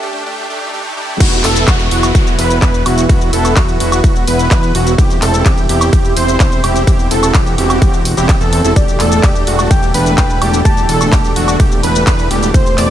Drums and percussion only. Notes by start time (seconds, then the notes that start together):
1.20 kick, closed hi-hat, crash, ride, shaker
1.32 closed hi-hat, shaker
1.44 clap, open hi-hat
1.56 closed hi-hat, shaker
1.68 kick, clap, closed hi-hat, ride, shaker
1.80 closed hi-hat, shaker
1.91 open hi-hat
2.03 closed hi-hat, high woodblock, shaker
2.15 kick, closed hi-hat, ride, shaker
2.27 closed hi-hat, shaker
2.39 open hi-hat
2.50 closed hi-hat, shaker
2.62 kick, clap, closed hi-hat, ride, shaker
2.74 closed hi-hat, shaker
2.86 open hi-hat, high woodblock
2.98 closed hi-hat, shaker
3.09 kick, closed hi-hat, ride, shaker
3.21 closed hi-hat, shaker
3.33 open hi-hat
3.45 closed hi-hat, high woodblock, shaker
3.56 kick, clap, closed hi-hat, ride, shaker
3.68 closed hi-hat, shaker
3.80 open hi-hat
3.92 closed hi-hat, high woodblock, shaker
4.04 kick, closed hi-hat, ride, shaker
4.16 closed hi-hat, shaker
4.28 open hi-hat
4.39 closed hi-hat, shaker
4.51 kick, clap, closed hi-hat, ride, shaker
4.63 closed hi-hat, shaker
4.75 open hi-hat
4.87 closed hi-hat, shaker
4.98 kick, closed hi-hat, ride, shaker
5.10 closed hi-hat, shaker
5.22 clap, open hi-hat
5.34 closed hi-hat, shaker
5.46 kick, clap, closed hi-hat, ride, shaker
5.58 closed hi-hat, shaker
5.69 open hi-hat
5.81 closed hi-hat, high woodblock, shaker
5.93 kick, closed hi-hat, ride, shaker
6.05 closed hi-hat, shaker
6.17 open hi-hat
6.28 closed hi-hat, shaker
6.40 kick, clap, closed hi-hat, ride, shaker
6.52 closed hi-hat, shaker
6.64 open hi-hat, high woodblock
6.76 closed hi-hat, shaker
6.87 kick, closed hi-hat, ride, shaker
6.99 closed hi-hat, shaker
7.11 open hi-hat
7.23 closed hi-hat, high woodblock, shaker
7.34 kick, clap, closed hi-hat, ride, shaker
7.46 closed hi-hat, shaker
7.58 open hi-hat
7.70 closed hi-hat, high woodblock, shaker
7.82 kick, closed hi-hat, ride, shaker
7.94 closed hi-hat, shaker
8.05 open hi-hat
8.17 closed hi-hat, shaker
8.29 kick, clap, closed hi-hat, ride, shaker
8.41 closed hi-hat, shaker
8.53 open hi-hat
8.64 closed hi-hat, shaker
8.76 kick, closed hi-hat, ride, shaker
8.88 closed hi-hat, shaker
9.00 clap, open hi-hat
9.12 closed hi-hat, shaker
9.23 kick, clap, closed hi-hat, ride, shaker
9.35 closed hi-hat, shaker
9.47 open hi-hat
9.59 closed hi-hat, high woodblock, shaker
9.71 kick, closed hi-hat, ride, shaker
9.83 closed hi-hat, shaker
9.94 open hi-hat
10.06 closed hi-hat, shaker
10.18 kick, clap, closed hi-hat, ride, shaker
10.30 closed hi-hat, shaker
10.42 open hi-hat, high woodblock
10.53 closed hi-hat, shaker
10.65 kick, closed hi-hat, ride, shaker
10.77 closed hi-hat, shaker
10.89 open hi-hat
11.01 closed hi-hat, high woodblock, shaker
11.12 kick, clap, closed hi-hat, ride, shaker
11.24 closed hi-hat, shaker
11.36 open hi-hat
11.48 closed hi-hat, high woodblock, shaker
11.60 kick, closed hi-hat, ride, shaker
11.72 closed hi-hat, shaker
11.83 open hi-hat
11.95 closed hi-hat, shaker
12.07 kick, clap, closed hi-hat, ride, shaker
12.19 closed hi-hat, shaker
12.31 open hi-hat
12.43 closed hi-hat, shaker
12.54 kick, closed hi-hat, ride, shaker
12.66 closed hi-hat, shaker
12.78 clap, open hi-hat